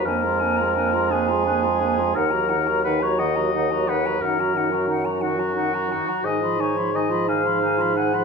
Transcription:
<<
  \new Staff \with { instrumentName = "Flute" } { \time 6/8 \key ees \minor \tempo 4. = 58 aes''16 bes''16 aes''16 bes''16 aes''16 bes''16 aes''16 bes''16 aes''16 bes''16 aes''16 bes''16 | ges''16 bes''16 ges''16 bes''16 ges''16 bes''16 ges''16 bes''16 ges''16 bes''16 ges''16 bes''16 | ges''16 bes''16 ges''16 bes''16 ges''16 bes''16 ges''16 bes''16 ges''16 bes''16 ges''16 bes''16 | aes''16 ces'''16 aes''16 ces'''16 aes''16 ces'''16 aes''16 ces'''16 aes''16 ces'''16 aes''16 ces'''16 | }
  \new Staff \with { instrumentName = "Oboe" } { \time 6/8 \key ees \minor bes'4. aes'4. | bes'4 ces''16 des''16 ees''4 ces''8 | bes'4 r8 ges'4. | ees''8 des''8 ees''8 f''4 ges''8 | }
  \new Staff \with { instrumentName = "Clarinet" } { \time 6/8 \key ees \minor d'16 f'16 d'16 f'16 d'16 f'16 d'16 f'16 d'16 f'16 d'16 f'16 | ees'16 ges'16 ees'16 ges'16 ees'16 ges'16 ees'16 ges'16 ees'16 ges'16 ees'16 ges'16 | ees'16 ges'16 ees'16 ges'16 ees'16 ges'16 ees'16 ges'16 ees'16 ges'16 ees'16 ges'16 | ees'16 f'16 ees'16 f'16 ees'16 f'16 ees'16 f'16 ees'16 f'16 ees'16 f'16 | }
  \new Staff \with { instrumentName = "French horn" } { \clef bass \time 6/8 \key ees \minor bes16 aes16 bes16 aes16 bes16 aes16 bes16 aes16 bes16 aes16 bes16 aes16 | ees16 ges16 ees16 ges16 ees16 ges16 ees16 ges16 ees16 ges16 ees16 ges16 | ees16 ges16 ees16 ges16 ees16 ges16 ees16 ges16 ees16 ges16 ees16 ges16 | ees16 f16 ees16 f16 ees16 f16 ees16 f16 ees16 f16 ees16 f16 | }
  \new Staff \with { instrumentName = "Bassoon" } { \clef bass \time 6/8 \key ees \minor f,2. | ees,2. | ges,2~ ges,8 r8 | aes,2. | }
>>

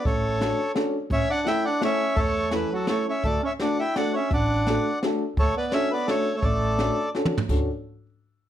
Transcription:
<<
  \new Staff \with { instrumentName = "Accordion" } { \time 3/4 \key d \major \tempo 4 = 169 <a' cis''>2 r4 | <cis'' e''>8 <d'' fis''>8 <e'' g''>8 <d'' fis''>8 <cis'' e''>4 | <a' cis''>4 <e' b'>8 <fis' a'>8 <a' cis''>8 <cis'' e''>8 | <a' d''>8 <cis'' e''>8 <d'' fis''>8 <e'' g''>8 <d'' fis''>8 <cis'' e''>8 |
<d'' fis''>2 r4 | <a' cis''>8 <b' d''>8 <cis'' e''>8 <b' d''>8 <a' cis''>8. <a' cis''>16 | <a' d''>2 r4 | r2. | }
  \new Staff \with { instrumentName = "Upright piano" } { \time 3/4 \key d \major r4 <cis' d' fis' a'>8 r8 <cis' d' fis' a'>8 r8 | r4 <a cis' e' a'>8 r8 <a cis' e' a'>8 r8 | r4 <a cis' e' a'>8 r8 <a cis' e' a'>8 r8 | r4 <a d' fis' a'>8 r8 <a d' fis' a'>8 r8 |
r4 <a d' fis' a'>8 r8 <a d' fis' a'>8 r8 | r4 <cis' d' fis' a'>8 r8 <cis' d' fis' a'>8 r8 | r4 <cis' d' fis' a'>8 r8 <cis' d' fis' a'>8 r8 | <cis' d' fis' a'>8 r2 r8 | }
  \new Staff \with { instrumentName = "Clarinet" } { \time 3/4 \key d \major a2 r4 | cis'8 d'8 e'8 d'8 cis'4 | a4 e8 fis8 a8 cis'8 | a8 cis'8 d'8 e'8 d'8 cis'8 |
d'2 r4 | a8 b8 cis'8 b8 a8. a16 | a2 r4 | r2. | }
  \new Staff \with { instrumentName = "Upright bass" } { \clef bass \time 3/4 \key d \major a,,2 r4 | a,,8 r2 r8 | e,2 r4 | d,8 r2 r8 |
a,,2 r4 | d,8 r2 r8 | a,,2 r4 | d,8 r2 r8 | }
  \new DrumStaff \with { instrumentName = "Drums" } \drummode { \time 3/4 <hh bd>4 <hh sn>4 <hh sn>4 | <hh bd>4 <hh sn>4 <hh sn>4 | <hh bd>4 <hh sn>4 <hh sn>4 | <hh bd>4 <hh sn>4 <hh sn>4 |
<hh bd>4 <hh sn>4 <hh sn>4 | <hh bd>4 <hh sn>4 <hh sn>4 | <hh bd>4 <hh sn>4 \tuplet 3/2 { sn8 toml8 tomfh8 } | <cymc bd>4 r4 r4 | }
>>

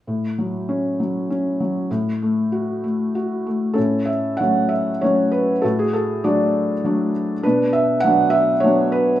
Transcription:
<<
  \new Staff \with { instrumentName = "Felt piano" } { \time 3/4 \key a \major \tempo 4 = 98 << { r2. | r2. | a'8 e''8 fis''8 e''8 cis''8 b'8 | a'16 gis'16 a'8 d''4. r8 |
b'8 e''8 fis''8 e''8 cis''8 b'8 | } \\ { r2. | r2. | cis'4. r4. | fis'4 fis'4. r8 |
d'4. r4. | } >> }
  \new Staff \with { instrumentName = "Felt piano" } { \time 3/4 \key a \major a,8 fis8 cis'8 fis8 cis'8 fis8 | a,8 a8 fis'8 a8 fis'8 a8 | a,4 <fis a cis'>4 <fis a cis'>4 | a,4 <fis a d'>4 <fis a d'>4 |
b,4 <fis b d'>4 <fis b d'>4 | }
>>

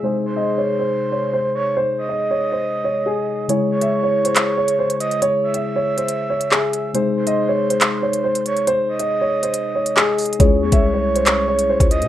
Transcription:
<<
  \new Staff \with { instrumentName = "Grand piano" } { \time 4/4 \key cis \minor \tempo 4 = 139 bis'8. dis''8 cis''8 bis'8. cis''8 bis'4 | bis'8. dis''8 cis''8 bis'8. cis''8 gis'4 | cis''8. e''8 cis''8 bis'8. cis''8 bis'4 | cis''8. e''8 cis''8 bis'8. cis''8 gis'4 |
bis'8. dis''8 cis''8 bis'8. cis''8 bis'4 | bis'8. dis''8 cis''8 bis'8. cis''8 gis'4 | cis''8. e''8 cis''8 bis'8. cis''8 bis'4 | }
  \new Staff \with { instrumentName = "Soft synth lead" } { \time 4/4 \key cis \minor r8 bis'2. cis''8 | r8 dis''2.~ dis''8 | r8 cis''2. dis''8 | r8 e''2.~ e''8 |
r8 bis'2. cis''8 | r8 dis''2.~ dis''8 | r8 cis''2. dis''8 | }
  \new Staff \with { instrumentName = "Synth keys" } { \time 4/4 \key cis \minor <bis, gis dis' gis'>1~ | <bis, gis dis' gis'>1 | <cis gis e' gis'>1~ | <cis gis e' gis'>1 |
<bis, gis dis' gis'>1~ | <bis, gis dis' gis'>1 | <gis cis' e' gis'>1 | }
  \new Staff \with { instrumentName = "808-style bass" } { \clef bass \time 4/4 \key cis \minor r1 | r1 | r1 | r1 |
r1 | r1 | cis,8 e,16 bis,,2~ bis,,8 cis,8 cis16 | }
  \new DrumStaff \with { instrumentName = "Drums" } \drummode { \time 4/4 r4 r4 r4 r4 | r4 r4 r4 r4 | hh8. hh16 r8. hh16 <hc hh>8. hh16 r16 hh16 hh16 hh16 | hh8. hh16 r8. hh16 hh8. hh16 hc8 hh8 |
hh8. hh16 r8. hh16 <hc hh>8. hh16 r16 hh16 hh16 hh16 | hh8. hh16 r8. hh16 hh8. hh16 \tuplet 3/2 { hc16 r16 r16 <hh hho>16 hh16 hh16 } | <hh bd>8. <hh bd>16 r8. hh16 <hc hh>8. hh16 r16 <hh bd>16 hh16 hh16 | }
>>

